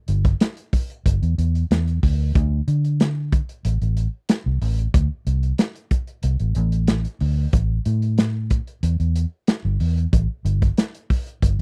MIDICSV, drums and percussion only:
0, 0, Header, 1, 2, 480
1, 0, Start_track
1, 0, Tempo, 647948
1, 1742, Time_signature, 4, 2, 24, 8
1, 8605, End_track
2, 0, Start_track
2, 0, Title_t, "Drums"
2, 58, Note_on_c, 9, 42, 58
2, 132, Note_off_c, 9, 42, 0
2, 183, Note_on_c, 9, 42, 37
2, 184, Note_on_c, 9, 36, 77
2, 257, Note_off_c, 9, 42, 0
2, 258, Note_off_c, 9, 36, 0
2, 300, Note_on_c, 9, 42, 79
2, 305, Note_on_c, 9, 38, 99
2, 374, Note_off_c, 9, 42, 0
2, 379, Note_off_c, 9, 38, 0
2, 421, Note_on_c, 9, 42, 37
2, 495, Note_off_c, 9, 42, 0
2, 540, Note_on_c, 9, 46, 67
2, 541, Note_on_c, 9, 36, 82
2, 614, Note_off_c, 9, 46, 0
2, 615, Note_off_c, 9, 36, 0
2, 666, Note_on_c, 9, 42, 32
2, 740, Note_off_c, 9, 42, 0
2, 783, Note_on_c, 9, 36, 69
2, 784, Note_on_c, 9, 42, 71
2, 857, Note_off_c, 9, 36, 0
2, 859, Note_off_c, 9, 42, 0
2, 909, Note_on_c, 9, 42, 32
2, 983, Note_off_c, 9, 42, 0
2, 1027, Note_on_c, 9, 42, 56
2, 1101, Note_off_c, 9, 42, 0
2, 1150, Note_on_c, 9, 42, 35
2, 1224, Note_off_c, 9, 42, 0
2, 1267, Note_on_c, 9, 42, 71
2, 1272, Note_on_c, 9, 38, 100
2, 1341, Note_off_c, 9, 42, 0
2, 1346, Note_off_c, 9, 38, 0
2, 1390, Note_on_c, 9, 42, 36
2, 1464, Note_off_c, 9, 42, 0
2, 1505, Note_on_c, 9, 36, 76
2, 1505, Note_on_c, 9, 46, 76
2, 1579, Note_off_c, 9, 36, 0
2, 1579, Note_off_c, 9, 46, 0
2, 1743, Note_on_c, 9, 42, 70
2, 1744, Note_on_c, 9, 36, 95
2, 1817, Note_off_c, 9, 42, 0
2, 1818, Note_off_c, 9, 36, 0
2, 1984, Note_on_c, 9, 42, 58
2, 2058, Note_off_c, 9, 42, 0
2, 2108, Note_on_c, 9, 42, 35
2, 2182, Note_off_c, 9, 42, 0
2, 2223, Note_on_c, 9, 42, 75
2, 2228, Note_on_c, 9, 38, 99
2, 2297, Note_off_c, 9, 42, 0
2, 2302, Note_off_c, 9, 38, 0
2, 2462, Note_on_c, 9, 42, 59
2, 2463, Note_on_c, 9, 36, 86
2, 2536, Note_off_c, 9, 42, 0
2, 2537, Note_off_c, 9, 36, 0
2, 2586, Note_on_c, 9, 42, 35
2, 2661, Note_off_c, 9, 42, 0
2, 2702, Note_on_c, 9, 42, 82
2, 2777, Note_off_c, 9, 42, 0
2, 2827, Note_on_c, 9, 42, 35
2, 2901, Note_off_c, 9, 42, 0
2, 2939, Note_on_c, 9, 42, 60
2, 3014, Note_off_c, 9, 42, 0
2, 3177, Note_on_c, 9, 42, 82
2, 3182, Note_on_c, 9, 38, 104
2, 3251, Note_off_c, 9, 42, 0
2, 3256, Note_off_c, 9, 38, 0
2, 3420, Note_on_c, 9, 46, 83
2, 3494, Note_off_c, 9, 46, 0
2, 3546, Note_on_c, 9, 42, 36
2, 3620, Note_off_c, 9, 42, 0
2, 3661, Note_on_c, 9, 36, 105
2, 3661, Note_on_c, 9, 42, 85
2, 3735, Note_off_c, 9, 36, 0
2, 3735, Note_off_c, 9, 42, 0
2, 3902, Note_on_c, 9, 42, 61
2, 3976, Note_off_c, 9, 42, 0
2, 4023, Note_on_c, 9, 42, 35
2, 4097, Note_off_c, 9, 42, 0
2, 4137, Note_on_c, 9, 42, 76
2, 4142, Note_on_c, 9, 38, 89
2, 4211, Note_off_c, 9, 42, 0
2, 4216, Note_off_c, 9, 38, 0
2, 4263, Note_on_c, 9, 42, 40
2, 4337, Note_off_c, 9, 42, 0
2, 4377, Note_on_c, 9, 42, 61
2, 4378, Note_on_c, 9, 36, 81
2, 4451, Note_off_c, 9, 42, 0
2, 4453, Note_off_c, 9, 36, 0
2, 4500, Note_on_c, 9, 42, 35
2, 4574, Note_off_c, 9, 42, 0
2, 4613, Note_on_c, 9, 42, 75
2, 4687, Note_off_c, 9, 42, 0
2, 4738, Note_on_c, 9, 42, 37
2, 4812, Note_off_c, 9, 42, 0
2, 4852, Note_on_c, 9, 42, 56
2, 4926, Note_off_c, 9, 42, 0
2, 4979, Note_on_c, 9, 42, 40
2, 5053, Note_off_c, 9, 42, 0
2, 5093, Note_on_c, 9, 42, 77
2, 5098, Note_on_c, 9, 38, 98
2, 5167, Note_off_c, 9, 42, 0
2, 5172, Note_off_c, 9, 38, 0
2, 5221, Note_on_c, 9, 42, 39
2, 5295, Note_off_c, 9, 42, 0
2, 5338, Note_on_c, 9, 46, 72
2, 5412, Note_off_c, 9, 46, 0
2, 5577, Note_on_c, 9, 42, 72
2, 5580, Note_on_c, 9, 36, 106
2, 5651, Note_off_c, 9, 42, 0
2, 5654, Note_off_c, 9, 36, 0
2, 5819, Note_on_c, 9, 42, 54
2, 5893, Note_off_c, 9, 42, 0
2, 5943, Note_on_c, 9, 42, 32
2, 6017, Note_off_c, 9, 42, 0
2, 6058, Note_on_c, 9, 42, 68
2, 6064, Note_on_c, 9, 38, 100
2, 6132, Note_off_c, 9, 42, 0
2, 6138, Note_off_c, 9, 38, 0
2, 6299, Note_on_c, 9, 42, 57
2, 6302, Note_on_c, 9, 36, 77
2, 6373, Note_off_c, 9, 42, 0
2, 6376, Note_off_c, 9, 36, 0
2, 6426, Note_on_c, 9, 42, 32
2, 6500, Note_off_c, 9, 42, 0
2, 6541, Note_on_c, 9, 42, 81
2, 6615, Note_off_c, 9, 42, 0
2, 6667, Note_on_c, 9, 42, 35
2, 6741, Note_off_c, 9, 42, 0
2, 6783, Note_on_c, 9, 42, 62
2, 6857, Note_off_c, 9, 42, 0
2, 7019, Note_on_c, 9, 42, 74
2, 7024, Note_on_c, 9, 38, 102
2, 7093, Note_off_c, 9, 42, 0
2, 7098, Note_off_c, 9, 38, 0
2, 7261, Note_on_c, 9, 46, 77
2, 7335, Note_off_c, 9, 46, 0
2, 7389, Note_on_c, 9, 42, 36
2, 7463, Note_off_c, 9, 42, 0
2, 7504, Note_on_c, 9, 36, 103
2, 7504, Note_on_c, 9, 42, 79
2, 7578, Note_off_c, 9, 36, 0
2, 7578, Note_off_c, 9, 42, 0
2, 7746, Note_on_c, 9, 42, 61
2, 7820, Note_off_c, 9, 42, 0
2, 7867, Note_on_c, 9, 42, 37
2, 7868, Note_on_c, 9, 36, 77
2, 7941, Note_off_c, 9, 42, 0
2, 7942, Note_off_c, 9, 36, 0
2, 7982, Note_on_c, 9, 42, 76
2, 7987, Note_on_c, 9, 38, 94
2, 8056, Note_off_c, 9, 42, 0
2, 8062, Note_off_c, 9, 38, 0
2, 8109, Note_on_c, 9, 42, 44
2, 8183, Note_off_c, 9, 42, 0
2, 8224, Note_on_c, 9, 36, 85
2, 8224, Note_on_c, 9, 46, 70
2, 8298, Note_off_c, 9, 36, 0
2, 8298, Note_off_c, 9, 46, 0
2, 8347, Note_on_c, 9, 42, 34
2, 8422, Note_off_c, 9, 42, 0
2, 8463, Note_on_c, 9, 36, 68
2, 8463, Note_on_c, 9, 42, 78
2, 8537, Note_off_c, 9, 36, 0
2, 8537, Note_off_c, 9, 42, 0
2, 8605, End_track
0, 0, End_of_file